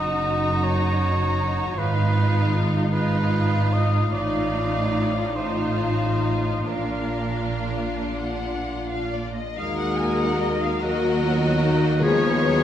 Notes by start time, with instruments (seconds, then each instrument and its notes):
Already playing: double bass section F#1, cello section F#2, viola section D#4, violin section F#4 A#5, cor anglais D#5
0.64 cor anglais C#5
1.77 double bass section G#1, cello section G#2, viola section D#4, violin section F4 F5, cor anglais B4
2.92 viola section D#4, violin section F4 F5, cor anglais B4
3.73 cor anglais D#5
4.11 double bass section A1, cello section A2, viola section D#4, violin section F4 F5, cor anglais D5
5.36 viola section D#4, violin section F4 F5, cor anglais C5
6.66 double bass section A#1, cello section A#2, viola section D4, violin section F4 F5, cor anglais A#4
8.19 violin section F#5
8.91 violin section F5
9.13 violin section D5
9.34 violin section D#5
9.57 double bass section D#2, cello section D#3, viola section G#3 A#3, french horn section A#3 F#4, violin section D#4 A#4 F5, clarinet G#4, cor anglais A#4, flute D#6
9.79 violin section F#5
9.98 violin section G#5
10.18 violin section F#5
10.39 violin section D#5
10.61 violin section F5
10.80 viola section F#3 A#3, french horn section A#3 F#4, violin section F#4 A#4 D#5, clarinet F#4, cor anglais A#4, flute F#6
11.23 viola section B3, clarinet F4
11.61 viola section A#3, clarinet D#4
12.01 timpani D#3, viola section F3 G#3, french horn section B3 F4, clarinet F4, violin section G#4 B4 C#5, cor anglais G#4, flute G#6
12.44 viola section F#3, clarinet F#4